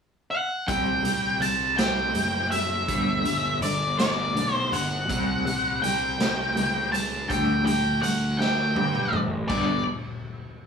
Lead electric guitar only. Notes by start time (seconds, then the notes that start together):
0.31 F#5
0.68 G5
1.42 A5
1.78 G5
2.51 E5
3.63 D5
3.99 D5
4.55 C5
4.73 F#5
5.82 G5
6.92 A5
7.29 G5
7.66 G5
8.02 F#5
8.39 G5
9.48 D5